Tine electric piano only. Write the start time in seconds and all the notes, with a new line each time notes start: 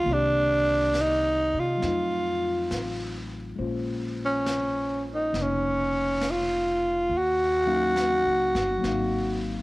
0.03 D#3 A#3
0.08 C4 D5
0.14 G4
1.77 F#3 A3
1.82 C4 D#4
1.88 F4
3.56 G#3 A#3 C5
3.60 C#4 F4
5.32 A#3 D#4
7.66 F#3 A#3 C#4 D#4 F5
8.78 F#3 A#3
8.83 C4 D#4
8.88 F5